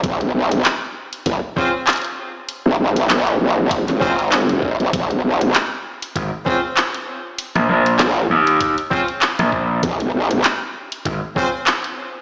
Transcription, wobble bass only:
X:1
M:4/4
L:1/16
Q:"Swing 16ths" 1/4=98
K:Bbm
V:1 name="Wobble bass" clef=bass
B,,,2 B,,,2 z4 A,,, z6 z | z B,,, B,,,2 B,,,2 B,,,3 A,,,6 B,,, | B,,,2 B,,,2 z12 | z4 B,,,2 z8 z2 |
B,,,2 B,,,2 z12 |]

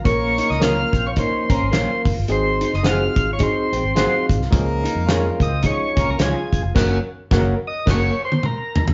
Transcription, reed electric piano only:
X:1
M:4/4
L:1/8
Q:"Swing" 1/4=108
K:Abmix
V:1 name="Reed electric piano"
[F,B,DB] z [F,B,DB] z [F,B,DB] z [F,B,DB] z | [G,CEA] z [G,CEGA] z [G,CEA] z [G,B,CEA] z | [F,A,DA] z [F,A,DB] z [F,A,DF] z [F,A,DEF] z | [G,B,DB] z [G,B,DB] z [G,B,D] z3 |]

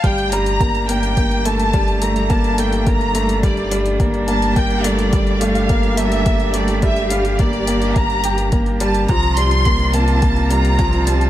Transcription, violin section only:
X:1
M:4/4
L:1/8
Q:1/4=106
K:Gm
V:1 name="Violin section"
g b2 g2 a2 b | a g b2 d2 z a | g d2 f2 =e2 d | =e f d2 b2 z a |
b c'2 a2 b2 a |]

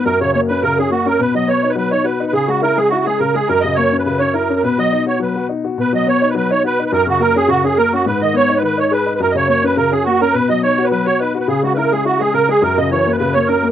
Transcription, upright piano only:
X:1
M:4/4
L:1/8
Q:"Swing" 1/4=210
K:B
V:1 name="Upright piano"
F,, C, A, C C, C A, C | B,, F, B, D F, D F D | C, G, E G, E G, C, G, | F,, C, A, C C, C E C |
B,, F, D F F, F D F | B,, F, B, D F, D F D | F,, C, A, C C, C A, C | G,, D, B, D D, D G D |
F,, C, A, C C, C A, C | B,, F, D F F, F D F | C, G, E G, E G, C, G, | F,, C, E, A, C, A, C A, |]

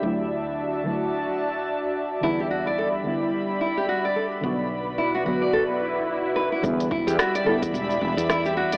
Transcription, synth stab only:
X:1
M:4/4
L:1/8
Q:"Swing 16ths" 1/4=109
K:Em
V:1 name="Synth stab" clef=bass
[D,F,A,E]3 [D,F,A,E]4- [D,F,A,E] | [D,G,B,E]3 [D,G,B,E]4- [D,G,B,E] | [D,F,B,F]3 [D,F,B,F]4- [D,F,B,F] | [D,G,B,E]3 [D,G,B,E]4- [D,G,B,E] |]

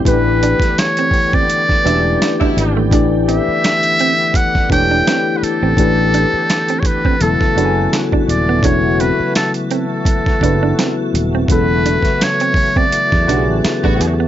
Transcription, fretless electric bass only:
X:1
M:4/4
L:1/16
Q:"Swing 16ths" 1/4=84
K:Am
V:1 name="Fretless electric bass" clef=bass
A,,,3 z6 z E,,,2 z2 ^G,,,2 | A,,,3 z6 z E,,,2 z3 A,,, | A,,,3 z4 z E,,, z ^F,,,2 z2 _E,,,2 | E,,,3 z6 z ^F,,,2 z2 _E,,,2 |
E,,,3 z6 E,, B,,, A,,, z A,,, E,,2 |]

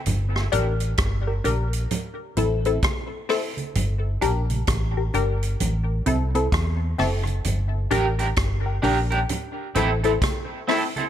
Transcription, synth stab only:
X:1
M:4/4
L:1/16
Q:"Swing 16ths" 1/4=65
K:Gdor
V:1 name="Synth stab"
z2 [DGB] z2 [GB] [DGB] z3 [CEA] [CEA] z2 [CEA] z | z2 [DGB] z2 [GB] [DGB] z3 [CEA] [CEA] z2 [CEA] z | z2 [DGB] z2 [GB] [DGB] z3 [CEA] [CEA] z2 [CEA] z |]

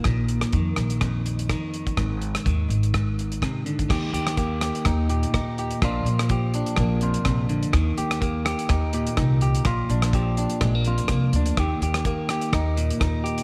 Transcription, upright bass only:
X:1
M:4/4
L:1/8
Q:"Swing 16ths" 1/4=125
K:Eb
V:1 name="Upright bass" clef=bass
B,,,2 F,, B,,,4 z | A,,,2 E,, A,,,4 z | E,, E,,3 E,,2 E,,2 | B,,, B,,,3 B,,,2 B,,,2 |
E,, E,,3 E,,2 C,,2 | B,,, B,,,3 B,,,2 C,, D,, | E,, E,,3 E,,2 E,,2 |]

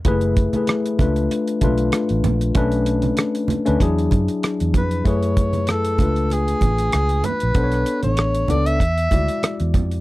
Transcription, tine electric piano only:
X:1
M:4/4
L:1/16
Q:"Swing 16ths" 1/4=96
K:F#m
V:1 name="Tine electric piano"
[A,EGB]2 z [A,EGB]3 [A,D^EB]3 z [A,DEB]4- [A,DEB] z | [A,CDB]4- [A,CDB] z2 [A,CDB] [F,DEG]6 z2 | [A,EGB]4- [A,EGB] z [A,D^EB]6 z4 | [B,DA^Bc]4- [=B,DA^Bc] z [=B,DAd]2 z2 [G,EFd]4- [G,EFd] z |]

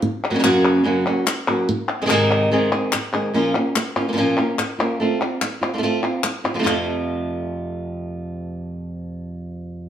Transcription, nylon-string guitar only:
X:1
M:4/4
L:1/8
Q:1/4=145
K:none
V:1 name="Nylon-string guitar"
z2 [_G,,_D,_G,_B,_D_G]2 [G,,D,G,B,DG] [G,B,DG] z [G,B,DG] | z2 [_A,,C,_E,_A,C_A]2 [A,,C,E,A,CA] [E,A,CA] z [E,A,CA] | [_B,,F,_B,_DF] [B,DF] z [B,DF] [B,,F,B,DF] [B,DF] z [B,DF] | [A,CF] [CF] z [CF] [A,CF] [CF] z [CF] |
[F,,C,F,A,CF]8- | [F,,C,F,A,CF]8 |]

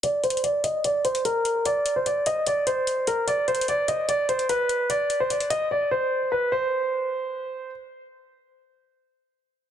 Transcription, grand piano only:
X:1
M:4/4
L:1/16
Q:1/4=148
K:Cm
V:1 name="Grand piano"
d2 c2 d2 e2 d2 c2 B4 | d3 c d2 e2 d2 c4 B2 | d2 c2 d2 e2 d2 c2 =B4 | d3 c d2 e2 d2 c4 =B2 |
c12 z4 | z16 |]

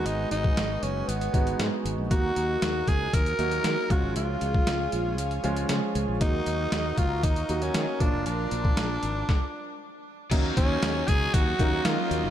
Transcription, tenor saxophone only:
X:1
M:4/4
L:1/16
Q:1/4=117
K:Ebm
V:1 name="Tenor saxophone"
E2 E4 D2 C4 z4 | G6 A2 B6 G2 | F12 z4 | E6 F2 E3 D3 =D2 |
=D12 z4 | z2 D4 A2 G4 F4 |]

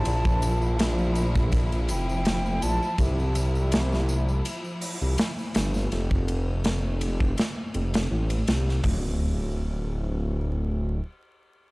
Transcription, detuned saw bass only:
X:1
M:4/4
L:1/16
Q:"Swing 16ths" 1/4=82
K:F
V:1 name="Detuned saw bass" clef=bass
B,,,8- B,,,2 F,,,4 B,,, z | C,,8 z3 C,, z2 G,,,2 | F,,,8 z2 F,,,2 A,,,2 C,,2 | D,,,12 z4 |]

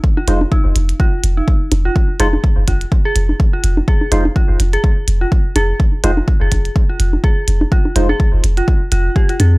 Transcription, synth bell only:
X:1
M:4/4
L:1/16
Q:"Swing 16ths" 1/4=125
K:Fm
V:1 name="Synth bell"
z F z2 E z3 F z2 E z3 F | z2 A z3 F z2 A z3 F z2 | A z3 F z2 A z3 F z2 A z | z2 F z2 A z3 F z2 A z3 |
F z2 A z3 F z2 F z G F A z |]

